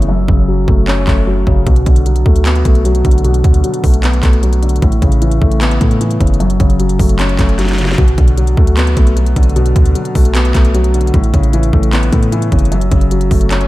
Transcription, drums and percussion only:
0.02 closed hi-hat soft
0.28 kick loud
0.68 kick loud
0.88 clap loud
1.07 kick medium
1.07 clap loud
1.47 kick medium
1.67 kick loud
1.67 closed hi-hat medium
1.76 closed hi-hat medium
1.86 kick loud
1.86 closed hi-hat medium
1.96 closed hi-hat medium
2.06 closed hi-hat medium
2.16 closed hi-hat medium
2.26 kick loud
2.36 closed hi-hat medium
2.45 clap loud
2.45 closed hi-hat medium
2.56 closed hi-hat soft
2.65 kick medium
2.65 closed hi-hat medium
2.75 closed hi-hat medium
2.85 closed hi-hat medium
2.95 closed hi-hat medium
3.05 kick medium
3.05 closed hi-hat medium
3.11 closed hi-hat medium
3.18 closed hi-hat soft
3.24 closed hi-hat medium
3.34 closed hi-hat medium
3.44 kick loud
3.44 closed hi-hat medium
3.54 closed hi-hat medium
3.64 closed hi-hat medium
3.74 closed hi-hat medium
3.84 kick loud
3.84 open hi-hat medium
3.94 closed hi-hat medium
4.03 clap loud
4.03 closed hi-hat medium
4.13 closed hi-hat soft
4.23 kick medium
4.23 clap loud
4.23 closed hi-hat medium
4.33 closed hi-hat medium
4.43 closed hi-hat medium
4.53 closed hi-hat medium
4.63 closed hi-hat medium
4.69 closed hi-hat medium
4.76 closed hi-hat soft
4.82 kick loud
4.82 closed hi-hat medium
4.92 closed hi-hat medium
5.02 kick loud
5.02 closed hi-hat medium
5.12 closed hi-hat medium
5.22 closed hi-hat medium
5.31 closed hi-hat medium
5.42 kick loud
5.52 closed hi-hat medium
5.61 clap loud
5.61 closed hi-hat medium
5.71 closed hi-hat soft
5.81 kick medium
5.81 closed hi-hat medium
5.91 closed hi-hat medium
6.01 closed hi-hat medium
6.11 closed hi-hat medium
6.21 kick medium
6.21 closed hi-hat medium
6.27 closed hi-hat medium
6.34 closed hi-hat soft
6.40 closed hi-hat medium
6.50 closed hi-hat medium
6.60 kick loud
6.60 closed hi-hat medium
6.70 closed hi-hat medium
6.80 closed hi-hat medium
6.89 closed hi-hat medium
6.99 kick loud
6.99 open hi-hat medium
7.09 closed hi-hat medium
7.19 clap loud
7.19 closed hi-hat medium
7.29 closed hi-hat medium
7.39 kick medium
7.39 clap loud
7.39 closed hi-hat loud
7.49 closed hi-hat medium
7.59 snare medium
7.59 closed hi-hat medium
7.65 snare medium
7.65 closed hi-hat medium
7.72 snare medium
7.78 snare medium
7.78 closed hi-hat medium
7.85 snare medium
7.92 snare medium
7.98 kick loud
7.98 closed hi-hat medium
8.08 closed hi-hat medium
8.18 kick loud
8.18 closed hi-hat medium
8.28 closed hi-hat medium
8.38 closed hi-hat medium
8.47 closed hi-hat medium
8.57 kick loud
8.67 closed hi-hat medium
8.77 clap loud
8.77 closed hi-hat medium
8.87 closed hi-hat soft
8.97 kick medium
8.97 closed hi-hat medium
9.07 closed hi-hat medium
9.17 closed hi-hat medium
9.26 closed hi-hat medium
9.36 kick medium
9.36 closed hi-hat medium
9.43 closed hi-hat medium
9.49 closed hi-hat soft
9.56 closed hi-hat medium
9.66 closed hi-hat medium
9.76 kick loud
9.76 closed hi-hat medium
9.85 closed hi-hat medium
9.95 closed hi-hat medium
10.05 closed hi-hat medium
10.15 kick loud
10.15 open hi-hat medium
10.25 closed hi-hat medium
10.35 clap loud
10.35 closed hi-hat medium
10.45 closed hi-hat soft
10.55 kick loud
10.55 clap loud
10.55 closed hi-hat medium
10.65 closed hi-hat medium
10.74 closed hi-hat medium
10.84 closed hi-hat medium
10.94 closed hi-hat medium
11.01 closed hi-hat medium
11.07 closed hi-hat soft
11.14 kick loud
11.14 closed hi-hat medium
11.24 closed hi-hat medium
11.34 kick loud
11.34 closed hi-hat medium
11.43 closed hi-hat medium
11.53 closed hi-hat medium
11.63 closed hi-hat medium
11.73 kick medium
11.83 closed hi-hat medium
11.93 clap loud
11.93 closed hi-hat medium
12.03 closed hi-hat medium
12.12 kick medium
12.12 closed hi-hat medium
12.23 closed hi-hat medium
12.32 closed hi-hat medium
12.42 closed hi-hat medium
12.52 kick medium
12.52 closed hi-hat medium
12.59 closed hi-hat medium
12.65 closed hi-hat soft
12.72 closed hi-hat medium
12.81 closed hi-hat medium
12.91 kick loud
12.91 closed hi-hat medium
13.01 closed hi-hat medium
13.11 closed hi-hat medium
13.21 closed hi-hat medium
13.31 kick loud
13.31 open hi-hat medium
13.41 closed hi-hat medium
13.51 clap loud
13.51 closed hi-hat medium
13.61 closed hi-hat soft

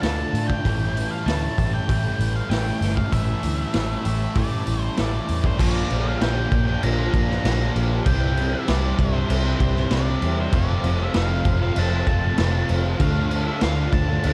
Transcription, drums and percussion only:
0.03 snare loud
0.03 open hi-hat medium
0.35 open hi-hat medium
0.50 kick medium
0.65 kick loud
0.65 open hi-hat medium
0.97 open hi-hat medium
1.28 snare loud
1.28 open hi-hat medium
1.58 kick medium
1.58 open hi-hat medium
1.89 kick loud
1.89 open hi-hat medium
2.20 open hi-hat medium
2.51 snare loud
2.51 open hi-hat medium
2.82 snare soft
2.82 open hi-hat medium
2.97 kick medium
3.12 kick medium
3.12 open hi-hat medium
3.43 open hi-hat medium
3.74 snare loud
3.74 open hi-hat medium
4.05 open hi-hat medium
4.35 kick loud
4.35 open hi-hat medium
4.67 open hi-hat medium
4.97 snare loud
4.97 open hi-hat medium
5.28 open hi-hat medium
5.44 kick medium
5.59 kick loud
5.59 crash loud
5.59 crash medium
5.90 crash medium
6.21 snare loud
6.21 crash medium
6.52 kick medium
6.52 crash medium
6.83 crash medium
7.14 kick loud
7.14 crash medium
7.30 snare soft
7.45 snare loud
7.45 crash medium
7.76 crash medium
8.06 kick loud
8.06 crash medium
8.37 crash medium
8.68 snare loud
8.68 crash medium
8.99 kick medium
8.99 crash medium
9.30 crash medium
9.60 kick medium
9.60 crash medium
9.76 snare soft
9.91 snare loud
9.91 crash medium
10.22 crash medium
10.53 kick loud
10.53 crash medium
10.84 crash medium
11.14 snare loud
11.14 crash medium
11.45 kick medium
11.45 crash medium
11.76 crash medium
12.07 kick medium
12.07 crash medium
12.38 snare loud
12.38 crash medium
12.69 crash medium
13.00 kick loud
13.00 crash medium
13.31 crash medium
13.61 snare loud
13.61 crash medium
13.92 kick medium
13.92 crash medium
14.24 crash medium

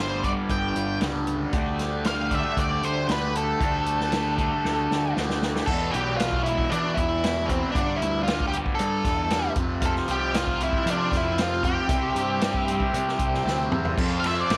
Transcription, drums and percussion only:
0.23 kick medium
0.23 closed hi-hat medium
0.49 kick medium
0.49 closed hi-hat medium
0.76 closed hi-hat medium
1.01 snare loud
1.01 closed hi-hat medium
1.27 closed hi-hat medium
1.53 kick loud
1.53 closed hi-hat medium
1.79 snare soft
1.79 closed hi-hat medium
2.04 snare loud
2.04 closed hi-hat medium
2.31 kick medium
2.31 closed hi-hat medium
2.57 kick medium
2.57 closed hi-hat medium
2.83 closed hi-hat medium
3.09 snare loud
3.09 closed hi-hat medium
3.35 closed hi-hat medium
3.61 kick loud
3.61 closed hi-hat medium
3.86 closed hi-hat medium
4.00 snare soft
4.12 snare loud
4.12 closed hi-hat medium
4.38 kick medium
4.38 closed hi-hat medium
4.65 snare medium
4.91 snare medium
5.17 snare medium
5.30 snare medium
5.42 snare medium
5.56 snare medium
5.67 kick loud
5.67 crash loud
5.94 closed hi-hat medium
6.19 snare loud
6.19 closed hi-hat medium
6.32 kick medium
6.46 closed hi-hat medium
6.58 kick medium
6.71 closed hi-hat medium
6.97 kick medium
6.97 closed hi-hat medium
7.24 snare loud
7.24 closed hi-hat medium
7.49 kick medium
7.49 closed hi-hat medium
7.75 kick loud
7.75 closed hi-hat medium
8.02 closed hi-hat medium
8.27 snare loud
8.27 closed hi-hat medium
8.40 kick medium
8.53 closed hi-hat medium
8.66 kick medium
8.79 closed hi-hat medium
9.05 kick medium
9.05 snare soft
9.05 closed hi-hat medium
9.30 snare loud
9.30 closed hi-hat medium
9.56 kick medium
9.56 closed hi-hat medium
9.82 kick loud
9.82 closed hi-hat medium
9.96 snare soft
10.08 closed hi-hat medium
10.34 snare loud
10.34 closed hi-hat loud
10.47 kick medium
10.60 closed hi-hat medium
10.73 kick medium
10.87 closed hi-hat loud
11.12 kick medium
11.12 snare soft
11.12 closed hi-hat medium
11.38 snare loud
11.38 closed hi-hat medium
11.63 kick medium
11.63 closed hi-hat medium
11.89 kick loud
11.89 closed hi-hat loud
12.16 closed hi-hat medium
12.41 snare loud
12.41 closed hi-hat medium
12.54 kick medium
12.68 closed hi-hat medium
12.80 kick medium
12.94 closed hi-hat medium
13.08 snare soft
13.19 kick medium
13.19 closed hi-hat medium
13.34 snare soft
13.47 snare medium
13.72 mid tom medium
13.85 floor tom medium
13.98 kick loud
13.98 crash loud
14.24 snare soft
14.24 ride medium
14.50 snare loud
14.50 ride loud

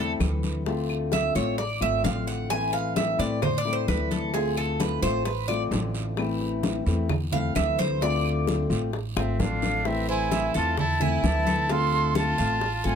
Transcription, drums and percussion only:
0.20 high bongo soft
0.20 low bongo medium
0.20 high conga medium
0.20 short guiro medium
0.20 claves medium
0.43 high bongo soft
0.43 high conga medium
0.43 short guiro medium
0.66 high bongo medium
0.66 high conga soft
0.66 long guiro medium
0.89 high bongo soft
0.89 high conga soft
0.89 claves medium
1.12 high bongo medium
1.12 high conga medium
1.12 short guiro medium
1.35 short guiro medium
1.58 high bongo medium
1.58 high conga soft
1.58 long guiro medium
1.81 high bongo soft
1.81 high conga soft
1.81 claves medium
2.04 high bongo soft
2.04 low bongo medium
2.04 high conga medium
2.04 short guiro medium
2.27 high bongo soft
2.27 short guiro medium
2.50 high bongo medium
2.50 high conga soft
2.50 long guiro medium
2.50 claves medium
2.73 high bongo soft
2.73 high conga soft
2.96 high bongo medium
2.96 high conga medium
2.96 short guiro medium
3.19 short guiro medium
3.42 high bongo medium
3.42 high conga soft
3.42 low conga medium
3.42 long guiro medium
3.42 claves medium
3.65 high bongo soft
3.88 high bongo soft
3.88 low bongo medium
3.88 high conga medium
3.88 short guiro medium
3.88 claves medium
4.11 high bongo soft
4.11 high conga medium
4.11 short guiro medium
4.34 high bongo medium
4.34 high conga soft
4.34 long guiro medium
4.57 high bongo soft
4.57 high conga soft
4.57 claves medium
4.80 high bongo medium
4.80 high conga loud
4.80 short guiro medium
5.03 high conga soft
5.03 short guiro medium
5.25 high bongo medium
5.25 high conga soft
5.25 long guiro medium
5.48 high bongo soft
5.48 high conga soft
5.48 claves medium
5.72 high bongo soft
5.72 low bongo medium
5.72 high conga medium
5.72 short guiro medium
5.95 high bongo soft
5.95 short guiro medium
6.17 high bongo medium
6.17 high conga soft
6.17 long guiro medium
6.17 claves medium
6.41 high bongo soft
6.41 high conga soft
6.63 high bongo medium
6.63 high conga medium
6.63 short guiro medium
6.87 high conga soft
6.87 short guiro medium
7.09 high bongo medium
7.09 high conga soft
7.09 low conga medium
7.09 long guiro medium
7.09 claves medium
7.32 high bongo soft
7.32 high conga soft
7.32 low conga medium
7.55 high bongo soft
7.55 low bongo medium
7.55 high conga medium
7.55 short guiro medium
7.55 claves medium
7.79 high bongo soft
7.79 high conga medium
7.79 short guiro medium
8.01 high bongo medium
8.01 high conga soft
8.01 long guiro medium
8.25 high bongo soft
8.25 high conga soft
8.25 claves medium
8.47 high bongo medium
8.47 high conga medium
8.47 short guiro medium
8.71 high conga soft
8.71 short guiro medium
8.93 high bongo medium
8.93 high conga soft
8.93 long guiro medium
9.17 high bongo loud
9.17 high conga soft
9.17 claves medium
9.40 low bongo medium
9.40 high conga medium
9.40 short guiro medium
9.62 low bongo medium
9.62 high conga medium
9.62 short guiro medium
9.85 high bongo medium
9.85 long guiro medium
10.09 high bongo soft
10.09 high conga soft
10.31 high bongo medium
10.31 high conga medium
10.31 short guiro medium
10.54 short guiro medium
10.78 high bongo medium
10.78 high conga soft
10.78 low conga medium
10.78 long guiro medium
11.00 high bongo soft
11.00 high conga soft
11.00 low conga medium
11.24 high bongo soft
11.24 low bongo medium
11.24 high conga medium
11.24 short guiro medium
11.46 high bongo soft
11.46 high conga medium
11.46 short guiro medium
11.69 high bongo medium
11.69 high conga soft
11.69 long guiro medium
11.92 high bongo soft
11.92 high conga soft
12.15 high bongo medium
12.15 high conga medium
12.15 short guiro medium
12.38 high conga soft
12.38 short guiro medium
12.61 high bongo medium
12.61 high conga soft
12.61 long guiro medium
12.84 high bongo soft
12.84 high conga soft

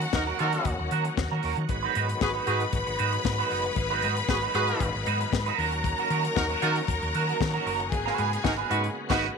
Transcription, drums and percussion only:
0.01 closed hi-hat medium
0.13 kick loud
0.13 snare loud
0.39 closed hi-hat medium
0.53 closed hi-hat medium
0.65 kick loud
0.65 closed hi-hat medium
0.91 closed hi-hat medium
1.05 closed hi-hat soft
1.17 kick loud
1.17 snare loud
1.43 open hi-hat medium
1.57 closed hi-hat soft
1.69 kick loud
1.69 closed hi-hat medium
1.95 closed hi-hat medium
2.09 closed hi-hat medium
2.21 kick loud
2.21 snare loud
2.47 closed hi-hat medium
2.60 closed hi-hat soft
2.73 kick loud
2.73 closed hi-hat medium
2.87 closed hi-hat soft
2.99 closed hi-hat medium
3.13 closed hi-hat soft
3.25 kick loud
3.25 snare loud
3.51 open hi-hat medium
3.64 closed hi-hat soft
3.76 kick loud
3.76 closed hi-hat medium
4.02 closed hi-hat medium
4.17 closed hi-hat medium
4.29 kick loud
4.29 snare loud
4.42 closed hi-hat soft
4.55 closed hi-hat medium
4.68 closed hi-hat soft
4.80 kick loud
4.80 closed hi-hat loud
5.06 closed hi-hat medium
5.21 closed hi-hat soft
5.33 kick loud
5.33 snare loud
5.46 closed hi-hat soft
5.59 open hi-hat medium
5.72 closed hi-hat soft
5.84 kick loud
5.84 closed hi-hat medium
5.98 closed hi-hat soft
6.10 closed hi-hat medium
6.25 closed hi-hat medium
6.37 kick loud
6.37 snare loud
6.50 closed hi-hat soft
6.62 closed hi-hat medium
6.75 closed hi-hat medium
6.88 kick loud
6.88 closed hi-hat medium
7.02 closed hi-hat soft
7.14 closed hi-hat medium
7.29 closed hi-hat soft
7.41 kick loud
7.41 snare loud
7.67 open hi-hat medium
7.80 closed hi-hat soft
7.92 kick loud
7.92 closed hi-hat medium
8.07 snare soft
8.18 closed hi-hat medium
8.33 closed hi-hat medium
8.45 kick loud
8.45 snare loud
8.71 closed hi-hat medium
8.84 closed hi-hat medium
9.10 kick loud
9.10 snare loud
9.10 crash loud

